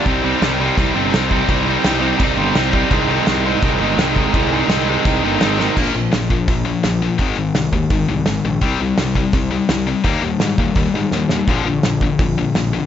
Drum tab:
CC |x-x-x-x-|x-x-x-x-|x-x-x-x-|x-x-x-x-|
HH |--------|--------|--------|--------|
SD |--o---o-|--o---o-|--o---o-|--o---oo|
BD |o---o--o|o---o--o|o---o--o|o---o---|

CC |x-------|--------|--------|--------|
HH |--o-o-o-|o-o-o-o-|o-o-o-o-|o-o-o---|
SD |--o---o-|--o---o-|--o---o-|--o---oo|
BD |o--oo---|o--oo---|o--oo---|o--oo---|

CC |--------|
HH |o-o-o-o-|
SD |--o---o-|
BD |o--oo---|